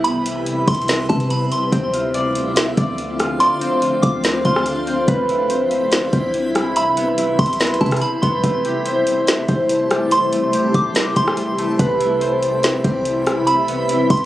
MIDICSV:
0, 0, Header, 1, 7, 480
1, 0, Start_track
1, 0, Tempo, 419580
1, 53, Time_signature, 4, 2, 24, 8
1, 16308, End_track
2, 0, Start_track
2, 0, Title_t, "Synth bell"
2, 0, Program_c, 0, 98
2, 47, Note_on_c, 0, 83, 94
2, 727, Note_off_c, 0, 83, 0
2, 776, Note_on_c, 0, 84, 90
2, 1226, Note_off_c, 0, 84, 0
2, 1248, Note_on_c, 0, 81, 74
2, 1478, Note_off_c, 0, 81, 0
2, 1496, Note_on_c, 0, 83, 79
2, 1723, Note_off_c, 0, 83, 0
2, 1739, Note_on_c, 0, 84, 70
2, 1964, Note_off_c, 0, 84, 0
2, 3891, Note_on_c, 0, 84, 105
2, 4569, Note_off_c, 0, 84, 0
2, 4604, Note_on_c, 0, 86, 82
2, 5059, Note_off_c, 0, 86, 0
2, 5093, Note_on_c, 0, 84, 83
2, 5770, Note_off_c, 0, 84, 0
2, 7740, Note_on_c, 0, 83, 102
2, 8413, Note_off_c, 0, 83, 0
2, 8455, Note_on_c, 0, 84, 91
2, 8905, Note_off_c, 0, 84, 0
2, 8931, Note_on_c, 0, 81, 80
2, 9160, Note_off_c, 0, 81, 0
2, 9167, Note_on_c, 0, 83, 84
2, 9398, Note_off_c, 0, 83, 0
2, 9404, Note_on_c, 0, 84, 71
2, 9636, Note_off_c, 0, 84, 0
2, 11578, Note_on_c, 0, 84, 101
2, 12252, Note_off_c, 0, 84, 0
2, 12299, Note_on_c, 0, 86, 74
2, 12747, Note_off_c, 0, 86, 0
2, 12773, Note_on_c, 0, 84, 79
2, 13450, Note_off_c, 0, 84, 0
2, 15408, Note_on_c, 0, 83, 99
2, 16087, Note_off_c, 0, 83, 0
2, 16136, Note_on_c, 0, 84, 94
2, 16308, Note_off_c, 0, 84, 0
2, 16308, End_track
3, 0, Start_track
3, 0, Title_t, "Harp"
3, 0, Program_c, 1, 46
3, 1967, Note_on_c, 1, 60, 89
3, 2211, Note_on_c, 1, 65, 78
3, 2453, Note_on_c, 1, 74, 91
3, 3168, Note_off_c, 1, 74, 0
3, 3173, Note_on_c, 1, 74, 89
3, 3645, Note_off_c, 1, 65, 0
3, 3650, Note_on_c, 1, 65, 75
3, 3889, Note_off_c, 1, 74, 0
3, 3893, Note_on_c, 1, 74, 86
3, 4127, Note_off_c, 1, 60, 0
3, 4132, Note_on_c, 1, 60, 95
3, 4365, Note_off_c, 1, 65, 0
3, 4370, Note_on_c, 1, 65, 82
3, 4848, Note_off_c, 1, 60, 0
3, 4853, Note_on_c, 1, 60, 88
3, 5096, Note_off_c, 1, 65, 0
3, 5101, Note_on_c, 1, 65, 80
3, 5570, Note_off_c, 1, 60, 0
3, 5575, Note_on_c, 1, 60, 90
3, 5809, Note_on_c, 1, 71, 87
3, 5877, Note_off_c, 1, 60, 0
3, 6006, Note_off_c, 1, 74, 0
3, 6057, Note_on_c, 1, 64, 76
3, 6125, Note_off_c, 1, 65, 0
3, 6288, Note_on_c, 1, 72, 90
3, 7009, Note_on_c, 1, 60, 89
3, 7485, Note_off_c, 1, 64, 0
3, 7490, Note_on_c, 1, 64, 84
3, 7734, Note_on_c, 1, 76, 91
3, 7973, Note_on_c, 1, 59, 94
3, 8042, Note_off_c, 1, 72, 0
3, 8153, Note_off_c, 1, 71, 0
3, 8211, Note_off_c, 1, 64, 0
3, 8216, Note_on_c, 1, 64, 88
3, 8688, Note_off_c, 1, 59, 0
3, 8693, Note_on_c, 1, 59, 88
3, 8761, Note_off_c, 1, 60, 0
3, 8928, Note_off_c, 1, 64, 0
3, 8933, Note_on_c, 1, 64, 83
3, 9410, Note_off_c, 1, 59, 0
3, 9415, Note_on_c, 1, 59, 89
3, 9653, Note_on_c, 1, 57, 84
3, 9705, Note_off_c, 1, 76, 0
3, 9896, Note_on_c, 1, 67, 80
3, 10136, Note_on_c, 1, 72, 87
3, 10205, Note_off_c, 1, 59, 0
3, 10844, Note_off_c, 1, 72, 0
3, 10848, Note_on_c, 1, 72, 87
3, 11325, Note_off_c, 1, 67, 0
3, 11330, Note_on_c, 1, 67, 77
3, 11574, Note_off_c, 1, 72, 0
3, 11579, Note_on_c, 1, 72, 85
3, 11807, Note_off_c, 1, 57, 0
3, 11812, Note_on_c, 1, 57, 85
3, 11920, Note_off_c, 1, 64, 0
3, 12051, Note_off_c, 1, 67, 0
3, 12056, Note_on_c, 1, 67, 82
3, 12528, Note_off_c, 1, 57, 0
3, 12533, Note_on_c, 1, 57, 88
3, 12773, Note_off_c, 1, 67, 0
3, 12778, Note_on_c, 1, 67, 77
3, 13247, Note_off_c, 1, 57, 0
3, 13252, Note_on_c, 1, 57, 90
3, 13499, Note_on_c, 1, 71, 88
3, 13567, Note_off_c, 1, 72, 0
3, 13733, Note_on_c, 1, 64, 86
3, 13972, Note_on_c, 1, 72, 92
3, 14688, Note_on_c, 1, 60, 92
3, 15174, Note_off_c, 1, 64, 0
3, 15179, Note_on_c, 1, 64, 77
3, 15410, Note_on_c, 1, 76, 79
3, 15471, Note_off_c, 1, 67, 0
3, 15651, Note_on_c, 1, 59, 91
3, 15720, Note_off_c, 1, 72, 0
3, 15843, Note_off_c, 1, 71, 0
3, 15887, Note_off_c, 1, 64, 0
3, 15892, Note_on_c, 1, 64, 85
3, 16308, Note_off_c, 1, 57, 0
3, 16308, Note_off_c, 1, 59, 0
3, 16308, Note_off_c, 1, 60, 0
3, 16308, Note_off_c, 1, 64, 0
3, 16308, Note_off_c, 1, 76, 0
3, 16308, End_track
4, 0, Start_track
4, 0, Title_t, "Synth texture"
4, 0, Program_c, 2, 99
4, 0, Note_on_c, 2, 59, 76
4, 0, Note_on_c, 2, 60, 81
4, 0, Note_on_c, 2, 76, 89
4, 1927, Note_off_c, 2, 60, 0
4, 1934, Note_off_c, 2, 59, 0
4, 1935, Note_off_c, 2, 76, 0
4, 1974, Note_on_c, 2, 60, 74
4, 1974, Note_on_c, 2, 62, 80
4, 1974, Note_on_c, 2, 77, 95
4, 5775, Note_off_c, 2, 62, 0
4, 5775, Note_off_c, 2, 77, 0
4, 5811, Note_on_c, 2, 95, 92
4, 5813, Note_on_c, 2, 64, 83
4, 9613, Note_off_c, 2, 95, 0
4, 9615, Note_off_c, 2, 64, 0
4, 9651, Note_on_c, 2, 81, 91
4, 9653, Note_on_c, 2, 67, 82
4, 13448, Note_off_c, 2, 60, 0
4, 13453, Note_off_c, 2, 81, 0
4, 13455, Note_off_c, 2, 67, 0
4, 13495, Note_on_c, 2, 64, 81
4, 13495, Note_on_c, 2, 95, 88
4, 13496, Note_on_c, 2, 60, 76
4, 16308, Note_off_c, 2, 60, 0
4, 16308, Note_off_c, 2, 64, 0
4, 16308, Note_off_c, 2, 95, 0
4, 16308, End_track
5, 0, Start_track
5, 0, Title_t, "Ambient pad"
5, 0, Program_c, 3, 92
5, 0, Note_on_c, 3, 48, 82
5, 0, Note_on_c, 3, 52, 75
5, 0, Note_on_c, 3, 55, 73
5, 0, Note_on_c, 3, 64, 87
5, 1927, Note_off_c, 3, 52, 0
5, 1929, Note_off_c, 3, 64, 0
5, 1935, Note_off_c, 3, 48, 0
5, 1936, Note_off_c, 3, 55, 0
5, 1974, Note_on_c, 3, 53, 73
5, 1974, Note_on_c, 3, 57, 76
5, 1974, Note_on_c, 3, 60, 77
5, 1974, Note_on_c, 3, 65, 85
5, 1975, Note_on_c, 3, 50, 83
5, 5775, Note_off_c, 3, 50, 0
5, 5775, Note_off_c, 3, 53, 0
5, 5775, Note_off_c, 3, 57, 0
5, 5775, Note_off_c, 3, 60, 0
5, 5775, Note_off_c, 3, 65, 0
5, 5812, Note_on_c, 3, 48, 86
5, 5812, Note_on_c, 3, 52, 75
5, 5813, Note_on_c, 3, 55, 77
5, 5813, Note_on_c, 3, 64, 93
5, 9614, Note_off_c, 3, 55, 0
5, 9654, Note_on_c, 3, 55, 75
5, 9654, Note_on_c, 3, 57, 74
5, 13455, Note_off_c, 3, 55, 0
5, 13455, Note_off_c, 3, 57, 0
5, 13495, Note_on_c, 3, 55, 76
5, 16308, Note_off_c, 3, 48, 0
5, 16308, Note_off_c, 3, 52, 0
5, 16308, Note_off_c, 3, 55, 0
5, 16308, Note_off_c, 3, 64, 0
5, 16308, End_track
6, 0, Start_track
6, 0, Title_t, "808-style bass"
6, 0, Program_c, 4, 38
6, 0, Note_on_c, 4, 36, 105
6, 728, Note_off_c, 4, 36, 0
6, 773, Note_on_c, 4, 36, 100
6, 1234, Note_off_c, 4, 36, 0
6, 1254, Note_on_c, 4, 48, 108
6, 1714, Note_off_c, 4, 48, 0
6, 1972, Note_on_c, 4, 38, 107
6, 3127, Note_off_c, 4, 38, 0
6, 3175, Note_on_c, 4, 38, 109
6, 3980, Note_off_c, 4, 38, 0
6, 4613, Note_on_c, 4, 38, 101
6, 5074, Note_off_c, 4, 38, 0
6, 5093, Note_on_c, 4, 38, 104
6, 5784, Note_off_c, 4, 38, 0
6, 5812, Note_on_c, 4, 36, 108
6, 6967, Note_off_c, 4, 36, 0
6, 7013, Note_on_c, 4, 36, 106
6, 8407, Note_off_c, 4, 36, 0
6, 8453, Note_on_c, 4, 36, 100
6, 8914, Note_off_c, 4, 36, 0
6, 8934, Note_on_c, 4, 48, 109
6, 9164, Note_off_c, 4, 48, 0
6, 9413, Note_on_c, 4, 36, 99
6, 9643, Note_off_c, 4, 36, 0
6, 9652, Note_on_c, 4, 33, 107
6, 10807, Note_off_c, 4, 33, 0
6, 10853, Note_on_c, 4, 33, 108
6, 11659, Note_off_c, 4, 33, 0
6, 12292, Note_on_c, 4, 33, 103
6, 12753, Note_off_c, 4, 33, 0
6, 12773, Note_on_c, 4, 33, 104
6, 13464, Note_off_c, 4, 33, 0
6, 13493, Note_on_c, 4, 36, 109
6, 14647, Note_off_c, 4, 36, 0
6, 14694, Note_on_c, 4, 36, 103
6, 16088, Note_off_c, 4, 36, 0
6, 16133, Note_on_c, 4, 36, 109
6, 16308, Note_off_c, 4, 36, 0
6, 16308, End_track
7, 0, Start_track
7, 0, Title_t, "Drums"
7, 51, Note_on_c, 9, 42, 85
7, 166, Note_off_c, 9, 42, 0
7, 295, Note_on_c, 9, 42, 77
7, 409, Note_off_c, 9, 42, 0
7, 531, Note_on_c, 9, 42, 85
7, 646, Note_off_c, 9, 42, 0
7, 773, Note_on_c, 9, 36, 92
7, 773, Note_on_c, 9, 42, 72
7, 773, Note_on_c, 9, 46, 54
7, 853, Note_off_c, 9, 42, 0
7, 853, Note_on_c, 9, 42, 60
7, 888, Note_off_c, 9, 36, 0
7, 888, Note_off_c, 9, 46, 0
7, 933, Note_off_c, 9, 42, 0
7, 933, Note_on_c, 9, 42, 43
7, 1009, Note_off_c, 9, 42, 0
7, 1009, Note_on_c, 9, 42, 85
7, 1020, Note_on_c, 9, 38, 112
7, 1123, Note_off_c, 9, 42, 0
7, 1135, Note_off_c, 9, 38, 0
7, 1252, Note_on_c, 9, 42, 54
7, 1254, Note_on_c, 9, 36, 98
7, 1366, Note_off_c, 9, 42, 0
7, 1368, Note_off_c, 9, 36, 0
7, 1373, Note_on_c, 9, 42, 56
7, 1488, Note_off_c, 9, 42, 0
7, 1492, Note_on_c, 9, 42, 80
7, 1606, Note_off_c, 9, 42, 0
7, 1734, Note_on_c, 9, 42, 70
7, 1849, Note_off_c, 9, 42, 0
7, 1973, Note_on_c, 9, 36, 117
7, 1973, Note_on_c, 9, 42, 90
7, 2087, Note_off_c, 9, 36, 0
7, 2088, Note_off_c, 9, 42, 0
7, 2215, Note_on_c, 9, 42, 78
7, 2329, Note_off_c, 9, 42, 0
7, 2452, Note_on_c, 9, 42, 91
7, 2566, Note_off_c, 9, 42, 0
7, 2693, Note_on_c, 9, 42, 77
7, 2807, Note_off_c, 9, 42, 0
7, 2929, Note_on_c, 9, 42, 84
7, 2940, Note_on_c, 9, 38, 115
7, 3044, Note_off_c, 9, 42, 0
7, 3055, Note_off_c, 9, 38, 0
7, 3173, Note_on_c, 9, 42, 65
7, 3174, Note_on_c, 9, 36, 95
7, 3287, Note_off_c, 9, 42, 0
7, 3289, Note_off_c, 9, 36, 0
7, 3412, Note_on_c, 9, 42, 89
7, 3526, Note_off_c, 9, 42, 0
7, 3655, Note_on_c, 9, 42, 69
7, 3660, Note_on_c, 9, 37, 90
7, 3770, Note_off_c, 9, 42, 0
7, 3775, Note_off_c, 9, 37, 0
7, 3892, Note_on_c, 9, 42, 91
7, 4007, Note_off_c, 9, 42, 0
7, 4135, Note_on_c, 9, 42, 83
7, 4249, Note_off_c, 9, 42, 0
7, 4371, Note_on_c, 9, 42, 90
7, 4485, Note_off_c, 9, 42, 0
7, 4611, Note_on_c, 9, 42, 74
7, 4612, Note_on_c, 9, 36, 95
7, 4726, Note_off_c, 9, 42, 0
7, 4727, Note_off_c, 9, 36, 0
7, 4847, Note_on_c, 9, 42, 87
7, 4858, Note_on_c, 9, 38, 112
7, 4961, Note_off_c, 9, 42, 0
7, 4972, Note_off_c, 9, 38, 0
7, 5090, Note_on_c, 9, 42, 67
7, 5093, Note_on_c, 9, 36, 100
7, 5204, Note_off_c, 9, 42, 0
7, 5207, Note_off_c, 9, 36, 0
7, 5220, Note_on_c, 9, 37, 104
7, 5329, Note_on_c, 9, 42, 84
7, 5334, Note_off_c, 9, 37, 0
7, 5443, Note_off_c, 9, 42, 0
7, 5573, Note_on_c, 9, 42, 68
7, 5688, Note_off_c, 9, 42, 0
7, 5812, Note_on_c, 9, 36, 116
7, 5812, Note_on_c, 9, 42, 90
7, 5926, Note_off_c, 9, 36, 0
7, 5926, Note_off_c, 9, 42, 0
7, 6053, Note_on_c, 9, 42, 78
7, 6167, Note_off_c, 9, 42, 0
7, 6290, Note_on_c, 9, 42, 84
7, 6404, Note_off_c, 9, 42, 0
7, 6532, Note_on_c, 9, 42, 75
7, 6646, Note_off_c, 9, 42, 0
7, 6768, Note_on_c, 9, 42, 83
7, 6779, Note_on_c, 9, 38, 118
7, 6882, Note_off_c, 9, 42, 0
7, 6893, Note_off_c, 9, 38, 0
7, 7011, Note_on_c, 9, 42, 63
7, 7014, Note_on_c, 9, 36, 99
7, 7126, Note_off_c, 9, 42, 0
7, 7128, Note_off_c, 9, 36, 0
7, 7252, Note_on_c, 9, 42, 84
7, 7366, Note_off_c, 9, 42, 0
7, 7495, Note_on_c, 9, 42, 72
7, 7501, Note_on_c, 9, 37, 92
7, 7610, Note_off_c, 9, 42, 0
7, 7615, Note_off_c, 9, 37, 0
7, 7733, Note_on_c, 9, 42, 87
7, 7847, Note_off_c, 9, 42, 0
7, 7975, Note_on_c, 9, 42, 79
7, 8089, Note_off_c, 9, 42, 0
7, 8212, Note_on_c, 9, 42, 88
7, 8326, Note_off_c, 9, 42, 0
7, 8453, Note_on_c, 9, 36, 89
7, 8453, Note_on_c, 9, 42, 61
7, 8454, Note_on_c, 9, 46, 58
7, 8533, Note_off_c, 9, 42, 0
7, 8533, Note_on_c, 9, 42, 64
7, 8568, Note_off_c, 9, 36, 0
7, 8568, Note_off_c, 9, 46, 0
7, 8613, Note_off_c, 9, 42, 0
7, 8613, Note_on_c, 9, 42, 61
7, 8693, Note_off_c, 9, 42, 0
7, 8693, Note_on_c, 9, 42, 61
7, 8701, Note_on_c, 9, 38, 123
7, 8773, Note_off_c, 9, 42, 0
7, 8773, Note_on_c, 9, 42, 61
7, 8815, Note_off_c, 9, 38, 0
7, 8853, Note_off_c, 9, 42, 0
7, 8853, Note_on_c, 9, 42, 63
7, 8932, Note_off_c, 9, 42, 0
7, 8932, Note_on_c, 9, 42, 40
7, 8934, Note_on_c, 9, 36, 95
7, 8994, Note_off_c, 9, 42, 0
7, 8994, Note_on_c, 9, 42, 48
7, 9048, Note_off_c, 9, 36, 0
7, 9053, Note_off_c, 9, 42, 0
7, 9053, Note_on_c, 9, 42, 59
7, 9063, Note_on_c, 9, 37, 97
7, 9112, Note_off_c, 9, 42, 0
7, 9112, Note_on_c, 9, 42, 67
7, 9170, Note_off_c, 9, 42, 0
7, 9170, Note_on_c, 9, 42, 81
7, 9178, Note_off_c, 9, 37, 0
7, 9285, Note_off_c, 9, 42, 0
7, 9413, Note_on_c, 9, 42, 69
7, 9414, Note_on_c, 9, 36, 101
7, 9527, Note_off_c, 9, 42, 0
7, 9528, Note_off_c, 9, 36, 0
7, 9651, Note_on_c, 9, 42, 85
7, 9652, Note_on_c, 9, 36, 117
7, 9765, Note_off_c, 9, 42, 0
7, 9766, Note_off_c, 9, 36, 0
7, 9893, Note_on_c, 9, 42, 82
7, 10007, Note_off_c, 9, 42, 0
7, 10131, Note_on_c, 9, 42, 86
7, 10245, Note_off_c, 9, 42, 0
7, 10373, Note_on_c, 9, 42, 75
7, 10487, Note_off_c, 9, 42, 0
7, 10609, Note_on_c, 9, 42, 83
7, 10620, Note_on_c, 9, 38, 112
7, 10724, Note_off_c, 9, 42, 0
7, 10735, Note_off_c, 9, 38, 0
7, 10850, Note_on_c, 9, 42, 62
7, 10853, Note_on_c, 9, 36, 97
7, 10965, Note_off_c, 9, 42, 0
7, 10967, Note_off_c, 9, 36, 0
7, 11090, Note_on_c, 9, 42, 84
7, 11204, Note_off_c, 9, 42, 0
7, 11333, Note_on_c, 9, 42, 70
7, 11338, Note_on_c, 9, 37, 94
7, 11447, Note_off_c, 9, 42, 0
7, 11452, Note_off_c, 9, 37, 0
7, 11570, Note_on_c, 9, 42, 84
7, 11684, Note_off_c, 9, 42, 0
7, 11813, Note_on_c, 9, 42, 81
7, 11927, Note_off_c, 9, 42, 0
7, 12049, Note_on_c, 9, 42, 86
7, 12163, Note_off_c, 9, 42, 0
7, 12291, Note_on_c, 9, 42, 73
7, 12292, Note_on_c, 9, 36, 93
7, 12405, Note_off_c, 9, 42, 0
7, 12406, Note_off_c, 9, 36, 0
7, 12527, Note_on_c, 9, 42, 85
7, 12538, Note_on_c, 9, 38, 120
7, 12641, Note_off_c, 9, 42, 0
7, 12652, Note_off_c, 9, 38, 0
7, 12769, Note_on_c, 9, 42, 67
7, 12773, Note_on_c, 9, 36, 92
7, 12883, Note_off_c, 9, 42, 0
7, 12887, Note_off_c, 9, 36, 0
7, 12900, Note_on_c, 9, 37, 101
7, 13009, Note_on_c, 9, 42, 86
7, 13014, Note_off_c, 9, 37, 0
7, 13123, Note_off_c, 9, 42, 0
7, 13253, Note_on_c, 9, 42, 68
7, 13368, Note_off_c, 9, 42, 0
7, 13491, Note_on_c, 9, 42, 88
7, 13492, Note_on_c, 9, 36, 120
7, 13606, Note_off_c, 9, 42, 0
7, 13607, Note_off_c, 9, 36, 0
7, 13734, Note_on_c, 9, 42, 78
7, 13848, Note_off_c, 9, 42, 0
7, 13972, Note_on_c, 9, 42, 87
7, 14086, Note_off_c, 9, 42, 0
7, 14214, Note_on_c, 9, 42, 73
7, 14329, Note_off_c, 9, 42, 0
7, 14451, Note_on_c, 9, 42, 82
7, 14462, Note_on_c, 9, 38, 114
7, 14565, Note_off_c, 9, 42, 0
7, 14576, Note_off_c, 9, 38, 0
7, 14694, Note_on_c, 9, 42, 64
7, 14695, Note_on_c, 9, 36, 98
7, 14808, Note_off_c, 9, 42, 0
7, 14809, Note_off_c, 9, 36, 0
7, 14933, Note_on_c, 9, 42, 84
7, 15048, Note_off_c, 9, 42, 0
7, 15176, Note_on_c, 9, 42, 72
7, 15181, Note_on_c, 9, 37, 94
7, 15290, Note_off_c, 9, 42, 0
7, 15295, Note_off_c, 9, 37, 0
7, 15412, Note_on_c, 9, 42, 85
7, 15526, Note_off_c, 9, 42, 0
7, 15654, Note_on_c, 9, 42, 81
7, 15768, Note_off_c, 9, 42, 0
7, 15891, Note_on_c, 9, 42, 88
7, 16006, Note_off_c, 9, 42, 0
7, 16132, Note_on_c, 9, 42, 65
7, 16132, Note_on_c, 9, 46, 57
7, 16133, Note_on_c, 9, 36, 93
7, 16213, Note_off_c, 9, 42, 0
7, 16213, Note_on_c, 9, 42, 62
7, 16247, Note_off_c, 9, 46, 0
7, 16248, Note_off_c, 9, 36, 0
7, 16308, Note_off_c, 9, 42, 0
7, 16308, End_track
0, 0, End_of_file